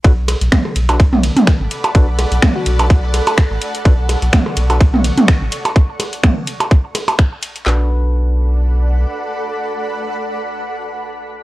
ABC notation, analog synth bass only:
X:1
M:4/4
L:1/16
Q:"Swing 16ths" 1/4=126
K:Bm
V:1 name="Analog synth bass" clef=bass
B,,,3 B,,, z2 B,,,4- B,,, z2 A,,, z2 | B,,,3 B,,, z2 B,,,4- B,,, z2 A,,, z2 | B,,,3 B,,, z2 B,,,4- B,,, z2 A,,, z2 | z16 |
B,,,12 z4 | z16 |]